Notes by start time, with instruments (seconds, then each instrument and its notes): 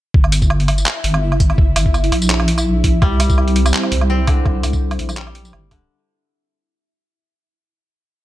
0.14 wobble bass G1, synth texture E4 E5, kick
0.24 low woodblock
0.32 closed hi-hat, tambourine
0.42 kick, tambourine
0.50 low woodblock
0.60 closed hi-hat
0.68 closed hi-hat, low woodblock
0.78 tambourine
0.86 clap, low woodblock
1.04 wobble bass G1, closed hi-hat
1.14 low woodblock
1.32 low woodblock
1.40 kick, closed hi-hat
1.50 low woodblock
1.58 kick
1.76 wobble bass G1, closed hi-hat, tambourine, low woodblock
1.86 kick
1.94 tambourine, low woodblock
2.04 closed hi-hat
2.12 wobble bass A#1, closed hi-hat, low woodblock
2.22 tambourine
2.30 clap
2.40 low woodblock
2.48 closed hi-hat
2.58 tambourine, low woodblock
2.84 kick, closed hi-hat
3.02 wobble bass C2, koto G3, analog synth pad G3 C4 E4 C5, kick, low woodblock
3.20 closed hi-hat, tambourine, low woodblock
3.30 kick, tambourine
3.38 low woodblock
3.48 closed hi-hat
3.56 closed hi-hat
3.66 tambourine, low woodblock
3.74 clap
3.83 low woodblock
3.92 wobble bass C2, closed hi-hat
4.01 low woodblock
4.10 koto C4
4.27 koto D3, kick, closed hi-hat, low woodblock
4.45 kick, low woodblock
4.63 wobble bass C2, closed hi-hat, tambourine, low woodblock
4.73 kick, tambourine
4.91 closed hi-hat, low woodblock
4.99 wobble bass A#1, closed hi-hat
5.09 tambourine, low woodblock
5.17 koto G3, clap
5.27 low woodblock
5.35 closed hi-hat
5.45 tambourine
5.53 wobble bass G1, low woodblock
5.71 koto D3, kick, closed hi-hat, low woodblock